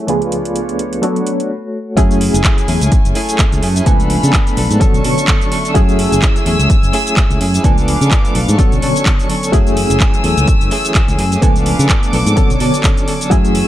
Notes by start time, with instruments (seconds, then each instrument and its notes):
0.07 reed electric piano C#2 F3 A3 B3 D4 G#4, clean electric guitar A3 D4 F4 B4, violin section F4 B4 C#5 D5, closed hi-hat
0.22 closed hi-hat
0.32 closed hi-hat
0.45 closed hi-hat
0.56 closed hi-hat
0.69 closed hi-hat
0.79 closed hi-hat
0.93 closed hi-hat
1.02 reed electric piano F#3 B3 D4 A4 C#5, clean electric guitar A3 D4 F#4 C#5, violin section B4, closed hi-hat
1.16 closed hi-hat
1.27 closed hi-hat
1.40 closed hi-hat
1.96 fingered electric bass F#2, reed electric piano F#3 A3 C#4 E4 G#4, clean electric guitar A3 C#4 E4 G#4, violin section A3 E4 G#5, kick, closed hi-hat, cabasa
2.11 closed hi-hat, cabasa
2.21 open hi-hat
2.34 fingered electric bass F#1, clean electric guitar C#4 E4 G#4, closed hi-hat, cabasa
2.44 clean electric guitar A3 C#4 E4 G#4, kick, clap, closed hi-hat, cabasa
2.57 clean electric guitar C#4 E4 G#4, closed hi-hat, cabasa
2.68 fingered electric bass E2, clean electric guitar A3 C#4 E4 G#4, open hi-hat
2.81 fingered electric bass C#2, closed hi-hat, cabasa
2.92 kick, closed hi-hat, cabasa
3.05 fingered electric bass F#1, closed hi-hat, cabasa
3.15 clean electric guitar A3 C#4 E4 G#4, open hi-hat
3.29 closed hi-hat, cabasa
3.39 clean electric guitar A3 C#4 E4 G#4, kick, clap, closed hi-hat, cabasa
3.52 fingered electric bass C#2, closed hi-hat, cabasa
3.62 fingered electric bass F#2, clean electric guitar A3 C#4 E4 G#4, open hi-hat
3.76 clean electric guitar C#4 E4 G#4, closed hi-hat, cabasa
3.85 fingered electric bass C#2, reed electric piano F3 A3 B3 D4 G#5, clean electric guitar F3 B3 D4 A4, violin section F5 B5, kick, closed hi-hat, cabasa
4.00 closed hi-hat, cabasa
4.10 open hi-hat
4.23 fingered electric bass C#3, clean electric guitar B3 D4 A4, closed hi-hat, cabasa
4.33 clean electric guitar F3 B3 D4 A4, kick, clap, closed hi-hat, cabasa
4.46 clean electric guitar B3 D4 A4, closed hi-hat, cabasa
4.57 fingered electric bass B1, clean electric guitar F3 B3 D4 A4, open hi-hat
4.70 fingered electric bass G#2, clean electric guitar B3 D4 A4, closed hi-hat, cabasa
4.80 reed electric piano D3 F#3 B3 A4 C#5, clean electric guitar F#3 C#4 D4 A4, violin section A3 C#6, kick, closed hi-hat, cabasa
4.94 fingered electric bass B1, closed hi-hat, cabasa
5.04 fingered electric bass B2, clean electric guitar F#3 C#4 D4 A4, open hi-hat
5.18 closed hi-hat, cabasa
5.28 clean electric guitar F#3 C#4 D4 A4, kick, clap, closed hi-hat, cabasa
5.41 closed hi-hat, cabasa
5.51 clean electric guitar F#3 C#4 D4 A4, open hi-hat
5.65 clean electric guitar C#4 D4 A4, closed hi-hat, cabasa
5.74 fingered electric bass F#2, reed electric piano F#3 A3 C#4 E4 G#4, clean electric guitar A3 C#4 E4 G#4, violin section G#5 E6, kick, closed hi-hat, cabasa
5.89 closed hi-hat, cabasa
5.99 open hi-hat
6.12 fingered electric bass F#1, clean electric guitar C#4 E4 G#4, closed hi-hat, cabasa
6.22 clean electric guitar A3 C#4 E4 G#4, kick, clap, closed hi-hat, cabasa
6.35 clean electric guitar C#4 E4 G#4, closed hi-hat, cabasa
6.46 fingered electric bass E2, clean electric guitar A3 C#4 E4 G#4, open hi-hat
6.59 fingered electric bass C#2, clean electric guitar C#4 E4 G#4, closed hi-hat, cabasa
6.70 kick, closed hi-hat, cabasa
6.83 fingered electric bass F#1, closed hi-hat, cabasa
6.93 clean electric guitar A3 C#4 E4 G#4, open hi-hat
7.07 closed hi-hat, cabasa
7.16 clean electric guitar A3 C#4 E4 G#4, kick, clap, closed hi-hat, cabasa
7.30 fingered electric bass C#2, closed hi-hat, cabasa
7.40 fingered electric bass F#2, clean electric guitar A3 C#4 E4 G#4, open hi-hat
7.53 clean electric guitar C#4 E4 G#4, closed hi-hat, cabasa
7.63 fingered electric bass C#2, reed electric piano F3 A3 B3 D4 G#5, clean electric guitar F3 B3 D4 A4, violin section B4 F5 D6, kick, closed hi-hat, cabasa
7.78 closed hi-hat, cabasa
7.88 open hi-hat
8.01 fingered electric bass C#3, clean electric guitar B3 D4 A4, closed hi-hat, cabasa
8.11 clean electric guitar F3 B3 D4 A4, kick, clap, closed hi-hat, cabasa
8.25 closed hi-hat, cabasa
8.35 fingered electric bass B1, clean electric guitar F3 B3 D4 A4, open hi-hat
8.48 fingered electric bass G#2, clean electric guitar B3 D4 A4, closed hi-hat, cabasa
8.58 reed electric piano D3 F#3 B3 A4 C#5, clean electric guitar F#3 C#4 D4 A4, violin section C#4 C#6, kick, closed hi-hat, cabasa
8.72 fingered electric bass B1, closed hi-hat, cabasa
8.82 fingered electric bass B2, clean electric guitar F#3 C#4 D4 A4, open hi-hat
8.96 closed hi-hat, cabasa
9.06 clean electric guitar F#3 C#4 D4 A4, kick, clap, closed hi-hat, cabasa
9.20 closed hi-hat, cabasa
9.29 clean electric guitar F#3 C#4 D4 A4, open hi-hat
9.42 clean electric guitar C#4 D4 A4, closed hi-hat, cabasa
9.52 fingered electric bass F#2, clean electric guitar E3 A3 C#4 G#4, reed electric piano F#3 A3 C#4 E4 G#4, violin section A3 G#5 E6, kick, closed hi-hat, cabasa
9.67 closed hi-hat, cabasa
9.77 open hi-hat
9.90 fingered electric bass F#1, clean electric guitar A3 C#4 G#4, closed hi-hat, cabasa
10.00 clean electric guitar E3 A3 C#4 G#4, kick, clap, closed hi-hat, cabasa
10.14 closed hi-hat, cabasa
10.24 fingered electric bass E2, clean electric guitar E3 A3 C#4 G#4, open hi-hat
10.37 fingered electric bass C#2, closed hi-hat, cabasa
10.48 kick, closed hi-hat, cabasa
10.61 fingered electric bass F#1, closed hi-hat, cabasa
10.71 clean electric guitar E3 A3 C#4 G#4, open hi-hat
10.85 closed hi-hat, cabasa
10.95 clean electric guitar E3 A3 C#4 G#4, kick, clap, closed hi-hat, cabasa
11.08 fingered electric bass C#2, closed hi-hat, cabasa
11.18 fingered electric bass F#2, clean electric guitar E3 A3 C#4 G#4, open hi-hat
11.32 clean electric guitar A3 C#4 G#4, closed hi-hat, cabasa
11.41 fingered electric bass C#2, reed electric piano F3 A3 B3 D4 G#5, clean electric guitar F3 B3 D4 A4, violin section B4 F5 D6, kick, closed hi-hat, cabasa
11.56 closed hi-hat, cabasa
11.66 open hi-hat
11.79 fingered electric bass C#3, clean electric guitar B3 D4 A4, closed hi-hat, cabasa
11.89 clean electric guitar F3 B3 D4 A4, kick, clap, closed hi-hat, cabasa
12.02 clean electric guitar B3 D4 A4, closed hi-hat, cabasa
12.13 fingered electric bass B1, clean electric guitar F3 B3 D4 A4, open hi-hat
12.26 fingered electric bass G#2, closed hi-hat, cabasa
12.36 reed electric piano D3 F#3 B3 A4 C#5, clean electric guitar F#3 C#4 D4 A4, violin section C#4, kick, closed hi-hat, cabasa
12.50 fingered electric bass B1, closed hi-hat, cabasa
12.60 fingered electric bass B2, clean electric guitar F#3 C#4 D4 A4, open hi-hat
12.74 closed hi-hat, cabasa
12.84 clean electric guitar F#3 C#4 D4 A4, kick, clap, closed hi-hat, cabasa
12.97 closed hi-hat, cabasa
13.07 clean electric guitar F#3 C#4 D4 A4, open hi-hat
13.20 clean electric guitar C#4 D4 A4, closed hi-hat, cabasa
13.30 fingered electric bass F#2, clean electric guitar E3 A3 C#4 G#4, reed electric piano F#3 A3 C#4 E4 G#4, violin section A3 G#5 E6, kick, closed hi-hat, cabasa
13.45 closed hi-hat, cabasa
13.55 open hi-hat